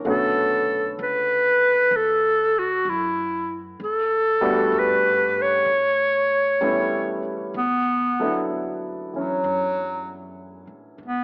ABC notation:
X:1
M:4/4
L:1/16
Q:"Swing" 1/4=64
K:D
V:1 name="Clarinet"
A4 B4 A2 F2 E3 z | A4 B2 c8 z2 | B,4 z2 F,6 z2 B,2 |]
V:2 name="Grand piano"
[D,A,B,CF]2 z12 z2 | z2 [G,A,B,DF]2 z8 [G,A,B,CE]2 z2 | z2 [F,B,DEA]4 [E,C]8- [E,C]2 |]
V:3 name="Upright bass" clef=bass
B,,,4 C,,4 D,,4 F,,4 | E,,4 G,,4 A,,4 E,,4 | D,,8 F,,4- (3F,,2 A,,2 ^G,,2 |]